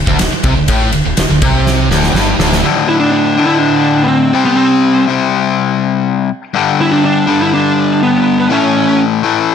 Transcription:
0.07 fingered electric bass D1, overdriven electric guitar D2, kick
0.19 fingered electric bass D1, overdriven electric guitar D2, snare, ride
0.32 muted overdriven electric guitar stroke, muted distorted electric guitar stroke, muted fingered electric bass stroke
0.44 fingered electric bass C2, overdriven electric guitar C3, kick, ride
0.56 fingered electric bass D1, overdriven electric guitar D2
0.68 fingered electric bass A1, overdriven electric guitar A2, kick, ride
0.92 fingered electric bass D1, overdriven electric guitar D2, ride
1.05 fingered electric bass D1, overdriven electric guitar D2
1.17 fingered electric bass D1, overdriven electric guitar D2, snare, ride
1.29 fingered electric bass D1, overdriven electric guitar D2
1.42 fingered electric bass C2, overdriven electric guitar C3, kick, ride
1.67 snare
1.89 fingered electric bass D1, overdriven electric guitar D2, snare
2.03 snare
2.14 fingered electric bass G1, overdriven electric guitar G2, snare
2.38 fingered electric bass D1, overdriven electric guitar D2, snare
2.53 snare
2.63 overdriven electric guitar D2 A2 D3
2.89 lead electric guitar E4
3.00 lead electric guitar D4
3.12 lead electric guitar D4
3.37 overdriven electric guitar D2 A2 D3
3.47 lead electric guitar E4
3.59 lead electric guitar D4
4.03 lead electric guitar B3
4.08 lead electric guitar C4
4.33 overdriven electric guitar C3 G3 C4
4.45 lead electric guitar B3
4.57 lead electric guitar C4
5.07 overdriven electric guitar C3 G3 C4
6.54 overdriven electric guitar G2 D3 G3
6.81 lead electric guitar E4
6.92 lead electric guitar D4
7.05 lead electric guitar D4
7.27 overdriven electric guitar G2 D3 G3
7.42 lead electric guitar E4
7.54 lead electric guitar D4
8.03 lead electric guitar B3
8.39 lead electric guitar B3
8.49 overdriven electric guitar A2 E3 A3, lead electric guitar C#4
9.23 overdriven electric guitar A2 E3 A3

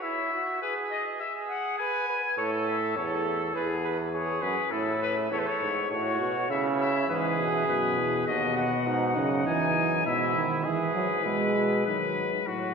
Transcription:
0.02 flugelhorn E4, trumpet E5
0.33 flugelhorn F#4
0.62 flugelhorn G#4, trumpet B4
0.91 trumpet D#5
1.20 flugelhorn G#4, trumpet E5
1.49 trumpet F#5
1.78 flugelhorn B4, trumpet G#5
2.08 flugelhorn B4
2.38 bass trombone A2, flugelhorn A4, trumpet C#5
2.67 trumpet E5
2.96 bass trombone E2, flugelhorn A4, trumpet C#5
3.25 trumpet A4
3.54 bass trombone E2, trumpet G#4, flugelhorn B4
3.84 flugelhorn B4
4.13 flugelhorn G#4, trumpet C#5
4.42 bass trombone F#2, trumpet B4
4.72 bass trombone A2, flugelhorn E4, trumpet A4
5.02 trumpet B4
5.32 bass trombone E2, flugelhorn A4, trumpet C#5
5.39 trumpet B4
5.47 trumpet C#5
5.61 bass trombone G#2
5.91 bass trombone A2, flugelhorn F#4, trumpet C#5
6.21 bass trombone B2
6.50 bass trombone C#3, flugelhorn E4, trumpet E5
6.81 trumpet E5
7.09 bass trombone G#2, euphonium E3, flugelhorn G#4, trumpet B4
7.39 bass trombone B2
7.68 bass trombone F#2, euphonium B2, trumpet B4
7.98 bass trombone E2
8.27 bass trombone D#2, euphonium B2, flugelhorn F#4, trumpet D#5
8.57 trumpet F#5
8.87 bass trombone G#2, flugelhorn D#4
9.17 bass trombone F#2, euphonium C#3
9.47 bass trombone E2, euphonium E3, trumpet G#5
9.77 bass trombone F#2
10.06 bass trombone G#2, euphonium B2, flugelhorn E4, trumpet E5
10.36 euphonium D#3
10.65 bass trombone G#2, euphonium E3, flugelhorn G#4, trumpet B4
10.95 euphonium F#3
11.25 bass trombone B2, euphonium G#3, flugelhorn E4
11.56 bass trombone B2
11.86 bass trombone D#3, euphonium F#3, trumpet B4
12.17 bass trombone G#2
12.46 bass trombone A2, euphonium F#3, trumpet F#4

